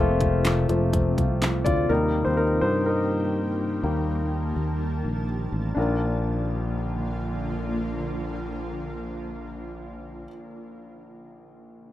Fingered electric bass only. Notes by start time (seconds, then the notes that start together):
Already playing: F1
0.69 F1
1.18 C2
1.66 D2
1.90 D#2
2.26 D#2
2.62 G2
3.83 D#2
4.56 D#2
5.05 A#1
5.52 A1
5.77 A#1